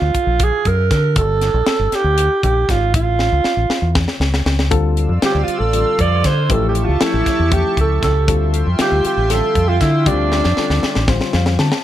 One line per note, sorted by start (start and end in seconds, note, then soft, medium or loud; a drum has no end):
0.00 0.13 D2 medium
0.00 0.45 F4 medium
0.15 muted fingered electric bass stroke soft
0.15 kick medium
0.15 closed hi-hat medium
0.27 0.50 A#1 medium
0.40 0.69 G#4 medium
0.40 kick medium
0.40 closed hi-hat medium
0.65 0.88 F#2 medium
0.65 0.90 A#4 medium
0.65 kick medium
0.65 closed hi-hat soft
0.91 1.18 D3 medium
0.91 1.15 A#4 medium
0.91 kick medium
0.91 snare soft
0.91 closed hi-hat medium
1.16 1.51 G1 loud
1.16 1.96 A4 loud
1.16 kick medium
1.16 closed hi-hat medium
1.41 snare soft
1.41 closed hi-hat soft
1.54 1.66 A#1 medium
1.66 snare medium
1.66 closed hi-hat medium
1.79 1.91 G1 medium
1.92 2.43 G4 medium
1.92 snare soft
1.92 closed hi-hat soft
2.04 2.27 D2 medium
2.18 closed hi-hat medium
2.43 2.66 A#1 medium
2.43 2.72 G4 medium
2.43 kick medium
2.43 closed hi-hat medium
2.69 2.94 G#1 medium
2.69 2.95 F4 medium
2.69 kick medium
2.69 snare soft
2.69 closed hi-hat medium
2.94 3.28 A1 loud
2.94 3.92 F4 medium
2.94 kick loud
2.94 closed hi-hat medium
3.19 snare soft
3.32 3.44 C#2 medium
3.44 muted fingered electric bass stroke soft
3.44 snare medium
3.57 3.69 A1 medium
3.70 snare medium
3.82 4.05 E2 medium
3.95 kick medium
3.95 snare medium
4.08 snare medium
4.20 4.43 C#2 medium
4.20 snare medium
4.34 snare medium
4.46 4.72 C#2 medium
4.46 snare medium
4.59 snare medium
4.71 5.06 D2 loud
4.71 5.11 D3 medium
4.71 5.11 G3 medium
4.71 5.11 C4 medium
4.71 5.11 F4 medium
4.71 5.11 A4 loud
4.71 6.49 D5 medium
4.71 6.49 F5 medium
4.71 6.49 C6 medium
4.71 6.49 E6 medium
4.71 kick loud
4.71 closed hi-hat medium
4.97 closed hi-hat medium
5.09 5.21 F2 medium
5.22 5.63 D3 medium
5.22 5.62 G3 medium
5.22 5.63 C4 soft
5.22 5.63 F4 medium
5.22 5.45 G4 medium
5.22 5.63 C5 medium
5.22 muted fingered electric bass stroke soft
5.22 snare medium
5.22 closed hi-hat medium
5.35 5.47 D2 medium
5.43 5.60 F4 medium
5.48 closed hi-hat medium
5.59 5.83 A1 medium
5.59 6.03 A4 medium
5.73 6.34 D3 medium
5.73 6.33 G3 medium
5.73 6.34 C4 medium
5.73 6.33 F4 medium
5.73 6.34 A4 medium
5.73 closed hi-hat medium
5.99 6.22 F2 medium
5.99 6.28 D5 loud
5.99 kick medium
5.99 closed hi-hat soft
6.24 6.51 D3 medium
6.24 6.53 C5 medium
6.24 kick medium
6.24 snare soft
6.24 closed hi-hat medium
6.49 6.84 A1 loud
6.49 6.90 F3 medium
6.49 6.90 A3 medium
6.49 6.90 C#4 medium
6.49 6.90 E4 medium
6.49 8.26 G4 medium
6.49 6.90 G4 medium
6.49 6.68 A4 medium
6.49 8.26 E5 medium
6.49 8.26 A5 medium
6.49 8.26 C#6 loud
6.49 kick medium
6.49 closed hi-hat medium
6.68 6.86 G4 medium
6.75 closed hi-hat medium
6.84 7.04 F4 medium
6.89 7.00 C#2 medium
7.00 7.41 F3 medium
7.00 7.40 A3 medium
7.00 7.41 C#4 soft
7.00 7.41 E4 soft
7.00 7.55 E4 medium
7.00 7.41 A4 medium
7.00 snare medium
7.00 closed hi-hat medium
7.14 7.25 A1 medium
7.26 kick medium
7.26 snare soft
7.26 closed hi-hat medium
7.39 7.62 E2 medium
7.51 8.11 F3 medium
7.51 8.11 A3 medium
7.51 8.11 C#4 medium
7.51 8.11 E4 medium
7.51 8.12 G4 medium
7.51 7.78 G4 medium
7.51 kick medium
7.51 closed hi-hat medium
7.77 8.00 C#2 medium
7.77 8.03 A4 medium
7.77 kick medium
7.77 closed hi-hat medium
8.03 8.28 C#2 medium
8.03 8.51 A4 medium
8.03 kick medium
8.03 snare soft
8.03 closed hi-hat medium
8.27 8.63 D2 loud
8.27 8.68 D3 medium
8.27 8.68 G3 medium
8.27 8.68 C4 medium
8.27 11.80 F4 medium
8.27 8.68 F4 medium
8.27 8.68 A4 medium
8.27 11.80 E5 medium
8.27 11.80 G5 medium
8.27 11.80 C6 medium
8.27 kick loud
8.27 closed hi-hat medium
8.54 closed hi-hat medium
8.67 8.78 F2 loud
8.79 9.19 D3 medium
8.79 9.19 G3 medium
8.79 9.19 C4 medium
8.79 9.19 F4 soft
8.79 9.19 G4 medium
8.79 9.04 G4 loud
8.79 muted fingered electric bass stroke soft
8.79 snare medium
8.79 closed hi-hat medium
8.92 9.03 D2 medium
9.05 9.33 G4 medium
9.05 closed hi-hat medium
9.17 9.40 A1 medium
9.30 9.90 D3 medium
9.30 9.90 G3 medium
9.30 9.90 C4 medium
9.30 9.90 F4 soft
9.30 9.90 A4 medium
9.30 9.70 A4 loud
9.30 snare soft
9.30 closed hi-hat medium
9.55 9.78 F2 medium
9.55 kick medium
9.55 closed hi-hat soft
9.69 9.82 F4 medium
9.81 10.08 D3 medium
9.81 10.08 E4 medium
9.81 kick medium
9.81 snare soft
9.81 closed hi-hat soft
10.06 10.41 D2 medium
10.06 10.46 D3 medium
10.06 10.46 G3 medium
10.06 10.46 C4 medium
10.06 11.08 D4 medium
10.06 10.46 F4 medium
10.06 10.46 G4 medium
10.06 kick medium
10.06 closed hi-hat medium
10.32 snare soft
10.44 10.56 F2 medium
10.44 snare soft
10.57 10.98 D3 medium
10.57 10.98 G3 medium
10.57 10.97 C4 soft
10.57 10.98 F4 medium
10.57 10.98 A4 medium
10.57 muted fingered electric bass stroke soft
10.57 snare medium
10.70 10.81 D2 medium
10.70 snare medium
10.83 snare medium
10.95 11.19 A1 medium
10.95 snare medium
11.08 11.68 D3 medium
11.08 11.68 G3 medium
11.08 11.68 C4 medium
11.08 11.68 F4 medium
11.08 11.68 C5 medium
11.08 kick loud
11.08 snare medium
11.21 snare medium
11.33 11.56 F2 medium
11.33 11.57 F5 medium
11.33 snare medium
11.46 snare medium
11.59 11.70 D3 medium
11.59 11.83 A5 medium
11.59 snare medium
11.72 snare medium